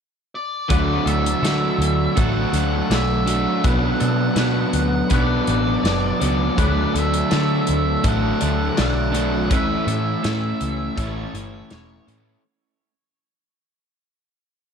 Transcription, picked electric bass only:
0.71 D2
1.06 D2
1.43 D3
1.79 D2
2.17 A1
2.53 D2
2.90 B1
3.65 B1
4.01 B2
4.36 B2
4.74 D2
5.11 B1
5.48 A1
5.84 F#1
6.22 C#2
6.58 D2
6.95 D2
7.33 D3
7.69 D2
8.04 A1
8.42 D2
8.78 B1
9.51 A1
9.87 A2
10.25 A2
10.61 C#2
10.98 A1
11.33 G1
11.72 E1
12.08 A2

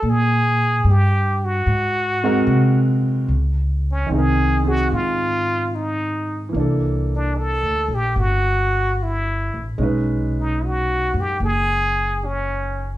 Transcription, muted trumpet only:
Already playing: A4
0.10 G#4
0.91 G4
1.45 F#4
3.91 C#4
4.13 G#4
4.68 F#4
4.93 F4
5.75 D#4
7.15 D4
7.38 A4
7.95 G4
8.19 F#4
9.03 E4
10.40 D#4
10.66 F#4
11.20 G4
11.44 G#4
12.25 C#4

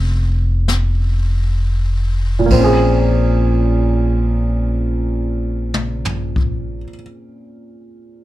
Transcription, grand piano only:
Already playing: G#3 A#3 C4 C#4 F4
2.39 A#2
2.46 A#3
2.52 C4
2.58 C#4
2.64 G#4

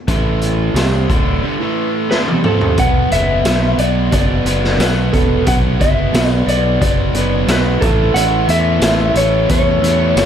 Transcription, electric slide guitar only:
2.11 B4
2.46 A4
2.79 F#5
3.12 E5
3.80 D5
4.13 D5
4.81 B4
5.13 A4
5.48 F#5
5.81 E5
6.28 D5
6.50 D5
6.82 D5
7.51 B4
7.81 A4
8.14 F#5
8.50 E5
9.17 C#5
9.51 C#5
10.18 C#5

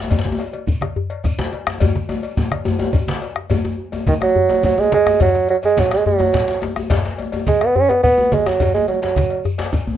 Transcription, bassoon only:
4.08 D#3
4.23 F#3
4.65 F#3
4.79 G#3
4.94 G#3
5.22 F#3
5.50 F#3
5.65 G#3
5.79 F#3
5.93 G#3
6.06 F#3
7.48 G#3
7.62 B3
7.76 C#4
7.89 B3
8.03 B3
8.33 G#3
8.47 F#3
8.74 G#3
8.88 F#3
9.03 F#3

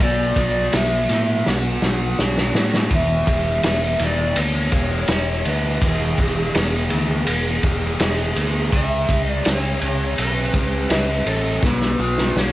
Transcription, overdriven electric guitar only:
0.00 B2
0.36 F#3
0.72 B3
1.09 B2
1.45 B3
1.82 F#3
2.19 D4
2.54 B3
2.90 E3
3.26 G#3
3.63 B3
4.00 E3
4.37 B3
4.72 G#3
5.09 E4
5.45 B3
5.82 E3
6.19 G#3
6.55 B3
6.89 E3
7.26 B3
7.62 G#3
7.99 E4
8.35 B3
8.70 C#3
9.06 G#3
9.43 C#4
9.79 C#3
10.15 C#4
10.53 G#3
10.90 E4
11.27 C#4
11.63 B2
11.99 F#3
12.36 B3

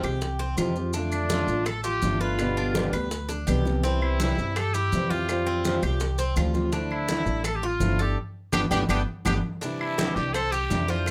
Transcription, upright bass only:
0.03 C2
0.57 F2
1.47 A1
2.02 G1
2.93 D2
3.48 C2
4.38 G2
4.92 F2
5.83 C2
6.36 D2
7.26 A1
7.80 G1
8.53 G1
8.71 G1
8.89 G1
9.25 G1
10.16 C2
10.70 F2

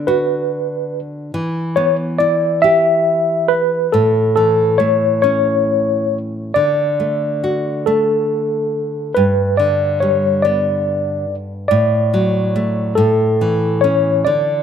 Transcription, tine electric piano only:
0.07 B4
1.76 C#5
2.19 D5
2.62 E5
3.48 B4
3.92 A4
4.36 A4
4.78 C#5
5.22 C#5
6.54 D5
7.86 A4
9.15 B4
9.57 D5
10.00 C#5
10.43 D5
11.68 D5
12.95 A4
13.81 C#5
14.25 D5

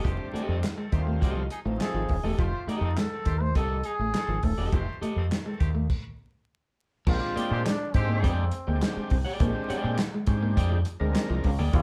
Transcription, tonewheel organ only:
0.04 G3 A3 C4 D4
0.92 G3 A3 C4 D#4
0.98 F4
1.65 F3 A3 C4 D#4
7.07 G#3 C4 D4 F4
7.14 G4
7.94 G#3 C4 D4 G4
8.67 G#3 C4 D4 G4
9.40 G#3 C4 D4 G4
10.27 G#3 C4 C#4 G4
10.34 D4
11.00 G#3 C4 D4 A#4
11.73 F3 A#3 C#4 F4

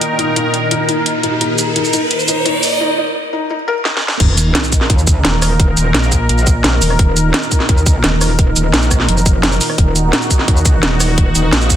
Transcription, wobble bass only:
4.20 D#1
4.90 D#2
5.25 D#1
5.77 D#1
5.94 A#1
6.29 A#1
6.64 A#1
6.82 D#1
6.99 D#1
7.69 D#2
8.04 D#1
8.56 D#1
8.74 A#1
9.08 F1
9.78 D#1
10.48 D#2
10.83 D#1
11.35 D#1
11.53 A#1

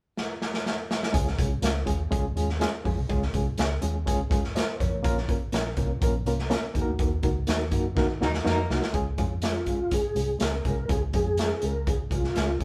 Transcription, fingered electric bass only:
1.14 C#2
1.39 C2
1.62 C#2
1.87 D#2
2.12 C#2
2.36 D#2
2.85 F2
2.98 C2
3.09 C#2
3.34 C2
3.58 C#2
3.83 D#2
4.07 C#2
4.31 D#2
4.80 F2
4.92 A1
5.04 A#1
5.29 G#1
5.53 A#1
5.77 C2
6.02 A#1
6.26 C2
6.75 D#2
6.87 D2
6.99 D#2
7.23 C#2
7.48 D#2
7.72 F#2
7.97 D#3
8.21 D#2
8.46 F2
8.70 C2
8.94 C#2
9.18 F2
9.67 C#2
10.16 C2
10.41 C#2
10.65 C2
10.89 C#2
11.14 F2
11.63 C#2
12.11 C2
12.36 C#2
12.60 A1

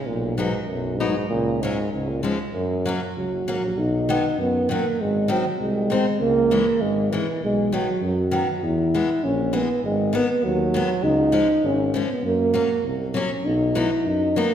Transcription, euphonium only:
0.06 A#2
0.37 G#2
0.63 G#2
0.67 F#2
0.97 G#2
1.29 A#2
1.62 G#2
1.91 G#2
2.09 A#2
2.24 G#2
2.53 F#2
3.18 F#3
3.78 D#4
4.41 B3
4.72 A#3
5.01 G#3
5.31 F#3
5.61 G#3
6.20 A#3
6.81 G#3
7.11 E3
7.44 G#3
7.74 F#3
8.05 F#3
8.57 F#4
8.64 E4
9.24 C#4
9.55 B3
9.85 G#3
10.14 B3
10.29 B3
10.44 F#3
11.03 D#4
11.66 C#4
12.12 B3
12.25 A#3
13.15 C#4
13.46 D#4
13.77 E4
14.07 D#4
14.38 A#3

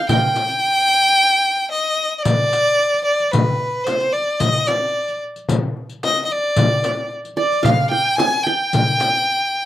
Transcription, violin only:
0.09 G5
1.71 D#5
2.18 D#5
2.23 D5
3.04 D5
3.32 B4
3.84 C5
4.12 D5
4.40 D#5
4.67 D5
6.04 D#5
6.25 D#5
6.31 D5
7.38 D5
7.64 F5
7.91 G5
8.16 G#5
8.43 G5

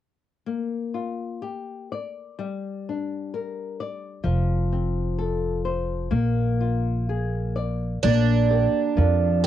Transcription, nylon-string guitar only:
0.46 A#3
0.94 F4
1.42 G4
1.92 D5
2.39 G3
2.89 D4
3.34 A#4
3.80 D5
4.24 F3
4.72 C4
5.19 A4
5.65 C5
6.11 A#3
6.61 F4
7.09 G#4
7.56 D5
8.04 A#3
8.51 G4 A#4 D5
8.97 F3
9.43 G4 A#4 D5

